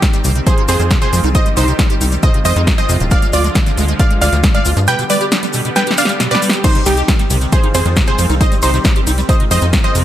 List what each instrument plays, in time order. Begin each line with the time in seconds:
Already playing: supersaw synth D#3 G3 C4 G4
0.02 acid bass D#4, kick, snare, closed hi-hat, cabasa
0.13 acid bass G3, snare, closed hi-hat, cabasa
0.24 analog synth bass C2, acid bass C3, open hi-hat, cabasa
0.35 acid bass C3, closed hi-hat, cabasa
0.47 supersaw synth D#3 G#3 F4, acid bass F3, synth pluck G#4 C5, grand piano C6, kick, closed hi-hat, cabasa
0.58 acid bass D#4, closed hi-hat
0.68 analog synth bass F2, acid bass C4, synth pluck G#4 C5, grand piano C6, open hi-hat, cabasa
0.80 analog synth bass F2, acid bass F3, closed hi-hat, cabasa
0.91 acid bass C3, kick, snare, closed hi-hat, cabasa
1.02 acid bass C3, synth pluck G#4 C5, grand piano C6, closed hi-hat, cabasa
1.13 analog synth bass F2, acid bass F3, open hi-hat, cabasa
1.24 analog synth bass C2, acid bass D#4, closed hi-hat, cabasa
1.35 supersaw synth G3 G4, acid bass D#4, synth pluck C5 D#5, grand piano D#6, kick, closed hi-hat, cabasa
1.46 acid bass G3, closed hi-hat, cabasa
1.57 analog synth bass C2, acid bass C3, synth pluck D#4 C5, grand piano C6, open hi-hat, cabasa
1.68 acid bass C3, closed hi-hat, cabasa
1.79 acid bass G3, kick, snare, closed hi-hat, cabasa
1.90 acid bass G4, closed hi-hat, cabasa
2.01 analog synth bass C2, acid bass D#4, open hi-hat, cabasa
2.12 acid bass G3, closed hi-hat, cabasa
2.23 acid bass C3, supersaw synth G#3 C4 F4, synth pluck C5 D#5, grand piano D#6, kick, closed hi-hat, cabasa
2.34 acid bass C3, closed hi-hat
2.45 analog synth bass F2, acid bass F3, synth pluck C5 D#5, grand piano D#6, open hi-hat, cabasa
2.56 analog synth bass F2, acid bass D#4, closed hi-hat, cabasa
2.67 acid bass C4, kick, snare, closed hi-hat, cabasa
2.78 acid bass F3, synth pluck C5 D#5, grand piano D#6, closed hi-hat, cabasa
2.89 analog synth bass F2, acid bass C3, open hi-hat, cabasa
3.00 analog synth bass D1, acid bass C3, closed hi-hat, cabasa
3.11 supersaw synth D3 F3 G#3, acid bass G#3, synth pluck D5 F5, grand piano F6, kick, closed hi-hat, cabasa
3.22 acid bass G#3, closed hi-hat, cabasa
3.33 analog synth bass D2, acid bass F4, synth pluck F4 D5, grand piano D6, open hi-hat, cabasa
3.44 acid bass G#3, closed hi-hat, cabasa
3.55 acid bass D3, kick, snare, closed hi-hat, cabasa
3.66 acid bass D3, snare, closed hi-hat, cabasa
3.77 analog synth bass D2, acid bass G#3, open hi-hat, cabasa
3.88 acid bass G#3, closed hi-hat, cabasa
3.99 acid bass F4, synth pluck D5 F5, grand piano F6, kick, closed hi-hat, cabasa
4.10 acid bass G#3, closed hi-hat
4.22 analog synth bass D2, acid bass D3, synth pluck D5 F5, grand piano F6, open hi-hat, cabasa
4.33 analog synth bass D2, acid bass D3, closed hi-hat, cabasa
4.43 acid bass G#3, kick, snare, closed hi-hat, cabasa
4.54 acid bass G#3, synth pluck D5 F5, grand piano F6, closed hi-hat, cabasa
4.65 analog synth bass D2, acid bass F4, open hi-hat, cabasa
4.77 analog synth bass G2, acid bass G#3, closed hi-hat, cabasa
4.87 acid bass B2, supersaw synth D3 G3 B3 G4, synth pluck B4 G5, grand piano G6, closed hi-hat, cabasa
4.99 acid bass B2, closed hi-hat, cabasa
5.10 acid bass G3, synth pluck B4 D5, grand piano D6, open hi-hat, cabasa
5.21 acid bass G4, closed hi-hat, cabasa
5.32 acid bass D4, snare, closed hi-hat, cabasa
5.43 acid bass G3, closed hi-hat, cabasa
5.53 acid bass B2, open hi-hat, cabasa
5.65 acid bass B2, closed hi-hat, cabasa
5.76 acid bass G3, synth pluck B4 G5, grand piano G6, snare, closed hi-hat, cabasa
5.86 acid bass G4, closed hi-hat, cabasa
5.91 snare
5.98 acid bass D4, synth pluck D5 F5, grand piano F6, open hi-hat, cabasa
6.05 acid bass G3, snare, closed hi-hat, cabasa
6.20 acid bass B2, snare, closed hi-hat, cabasa
6.31 acid bass B2, synth pluck B4 D5, grand piano D6, snare, closed hi-hat, cabasa
6.42 acid bass G3, open hi-hat, cabasa
6.49 acid bass G4, snare, closed hi-hat, cabasa
6.64 acid bass C3, supersaw synth D#3 C4, synth pluck D#4 C5, grand piano C6, kick, closed hi-hat, crash, ride, cabasa
6.75 acid bass C3, closed hi-hat, cabasa
6.86 analog synth bass C2, acid bass G3, synth pluck D#4 G4, grand piano G5, open hi-hat, ride, cabasa
6.97 acid bass G4, closed hi-hat, cabasa
7.08 acid bass D#4, kick, snare, closed hi-hat, ride, cabasa
7.19 acid bass G3, snare, closed hi-hat, cabasa
7.30 analog synth bass C2, acid bass C3, open hi-hat, ride, cabasa
7.41 acid bass C3, closed hi-hat, cabasa
7.52 acid bass F3, supersaw synth G#3 F4, synth pluck G#4 C5, grand piano C6, kick, closed hi-hat, ride, cabasa
7.63 acid bass D#4, closed hi-hat
7.74 analog synth bass F2, acid bass C4, synth pluck G#4 C5, grand piano C6, open hi-hat, ride, cabasa
7.85 analog synth bass F2, acid bass F3, closed hi-hat, cabasa
7.96 acid bass C3, kick, snare, closed hi-hat, ride, cabasa
8.07 acid bass C3, synth pluck G#4 C5, grand piano C6, closed hi-hat, cabasa
8.18 analog synth bass F2, acid bass F3, open hi-hat, ride, cabasa
8.30 analog synth bass C2, acid bass D#4, closed hi-hat, cabasa
8.41 supersaw synth G3 G4, acid bass D#4, synth pluck C5 D#5, grand piano D#6, kick, closed hi-hat, ride, cabasa
8.52 acid bass G3, closed hi-hat, cabasa
8.62 analog synth bass C2, acid bass C3, synth pluck D#4 C5, grand piano C6, open hi-hat, ride, cabasa
8.74 acid bass C3, closed hi-hat, cabasa
8.84 acid bass G3, kick, snare, closed hi-hat, ride, cabasa
8.96 acid bass G4, closed hi-hat, cabasa
9.07 analog synth bass C2, acid bass D#4, open hi-hat, ride, cabasa
9.18 acid bass G3, closed hi-hat, cabasa
9.29 acid bass C3, supersaw synth D#3 G#3 F4, synth pluck C5 D#5, grand piano D#6, kick, closed hi-hat, ride, cabasa
9.40 acid bass C3, closed hi-hat
9.51 analog synth bass F2, acid bass F3, synth pluck C5 D#5, grand piano D#6, open hi-hat, ride, cabasa
9.61 analog synth bass F2, acid bass D#4, closed hi-hat, cabasa
9.73 acid bass C4, kick, snare, closed hi-hat, ride, cabasa
9.84 acid bass F3, synth pluck C5 D#5, grand piano D#6, closed hi-hat, cabasa
9.95 analog synth bass F2, acid bass C3, open hi-hat, ride, cabasa